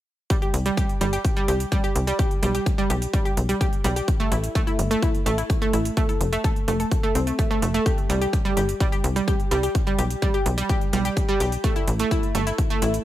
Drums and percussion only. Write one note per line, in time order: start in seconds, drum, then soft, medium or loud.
0.30 kick loud
0.30 closed hi-hat medium
0.42 closed hi-hat soft
0.54 closed hi-hat medium
0.66 closed hi-hat soft
0.77 kick loud
0.77 closed hi-hat soft
0.89 closed hi-hat soft
1.01 closed hi-hat medium
1.13 closed hi-hat medium
1.25 kick loud
1.25 closed hi-hat medium
1.37 closed hi-hat soft
1.48 closed hi-hat loud
1.60 closed hi-hat medium
1.72 kick loud
1.72 closed hi-hat medium
1.84 closed hi-hat soft
1.96 closed hi-hat medium
2.07 closed hi-hat medium
2.19 kick loud
2.19 closed hi-hat medium
2.31 closed hi-hat soft
2.43 closed hi-hat medium
2.55 closed hi-hat soft
2.66 kick loud
2.66 closed hi-hat soft
2.78 closed hi-hat soft
2.90 closed hi-hat medium
3.02 closed hi-hat soft
3.14 kick loud
3.14 closed hi-hat soft
3.26 closed hi-hat soft
3.37 closed hi-hat medium
3.49 closed hi-hat soft
3.61 kick loud
3.61 closed hi-hat soft
3.73 closed hi-hat soft
3.84 closed hi-hat medium
3.96 closed hi-hat medium
4.08 kick loud
4.08 closed hi-hat soft
4.20 closed hi-hat soft
4.32 closed hi-hat medium
4.44 closed hi-hat soft
4.55 kick loud
4.55 closed hi-hat soft
4.67 closed hi-hat soft
4.79 closed hi-hat medium
4.91 closed hi-hat medium
5.03 kick loud
5.03 closed hi-hat soft
5.15 closed hi-hat soft
5.26 closed hi-hat medium
5.38 closed hi-hat soft
5.50 kick loud
5.50 closed hi-hat soft
5.62 closed hi-hat soft
5.73 closed hi-hat medium
5.85 closed hi-hat soft
5.97 kick loud
5.97 closed hi-hat soft
6.09 closed hi-hat soft
6.21 closed hi-hat medium
6.33 closed hi-hat soft
6.44 kick loud
6.44 closed hi-hat soft
6.56 closed hi-hat soft
6.68 closed hi-hat medium
6.80 closed hi-hat soft
6.91 kick loud
6.91 closed hi-hat soft
7.03 closed hi-hat soft
7.15 closed hi-hat medium
7.27 closed hi-hat soft
7.39 kick loud
7.39 closed hi-hat soft
7.51 closed hi-hat soft
7.62 closed hi-hat medium
7.74 closed hi-hat soft
7.86 kick loud
7.86 closed hi-hat soft
7.98 closed hi-hat soft
8.10 closed hi-hat medium
8.22 closed hi-hat soft
8.33 kick loud
8.33 closed hi-hat soft
8.45 closed hi-hat soft
8.57 closed hi-hat medium
8.69 closed hi-hat soft
8.80 kick loud
8.80 closed hi-hat soft
8.92 closed hi-hat soft
9.04 closed hi-hat medium
9.16 closed hi-hat soft
9.28 kick loud
9.28 closed hi-hat soft
9.40 closed hi-hat soft
9.51 closed hi-hat medium
9.63 closed hi-hat soft
9.75 kick loud
9.75 closed hi-hat medium
9.87 closed hi-hat soft
9.99 closed hi-hat medium
10.10 closed hi-hat soft
10.22 kick loud
10.22 closed hi-hat soft
10.34 closed hi-hat soft
10.46 closed hi-hat medium
10.58 closed hi-hat medium
10.69 kick loud
10.69 closed hi-hat soft
10.81 closed hi-hat soft
10.93 closed hi-hat medium
11.05 closed hi-hat soft
11.17 kick loud
11.17 closed hi-hat medium
11.29 closed hi-hat soft
11.40 closed hi-hat medium
11.52 closed hi-hat soft
11.64 kick loud
11.64 closed hi-hat medium
11.76 closed hi-hat soft
11.88 closed hi-hat medium
11.99 closed hi-hat medium
12.11 kick loud
12.11 closed hi-hat soft
12.23 closed hi-hat soft
12.35 closed hi-hat medium
12.47 closed hi-hat medium
12.58 kick loud
12.58 closed hi-hat medium
12.70 closed hi-hat soft
12.82 closed hi-hat medium
12.94 closed hi-hat soft